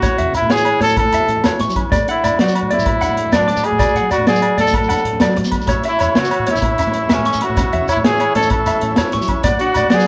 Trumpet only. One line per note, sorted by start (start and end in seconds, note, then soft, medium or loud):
0.00 0.35 F#4 loud
0.35 0.53 E4 medium
0.51 0.82 G#4 medium
0.82 0.96 A4 loud
0.98 1.56 A4 loud
2.10 2.38 E4 medium
2.40 2.69 F#4 medium
2.73 3.36 E4 medium
3.34 3.67 D4 medium
3.65 4.11 G#4 loud
4.12 4.26 F#4 medium
4.28 4.57 G#4 medium
4.60 4.74 A4 loud
4.76 5.34 A4 medium
5.88 6.20 E4 medium
6.19 6.52 F#4 medium
6.50 7.15 E4 loud
7.13 7.44 C#4 medium
7.43 7.89 F#4 medium
7.91 7.98 E4 medium
8.05 8.34 G#4 medium
8.35 8.50 A4 loud
8.51 9.10 A4 medium
9.60 9.95 F#4 loud
9.94 10.07 G#4 loud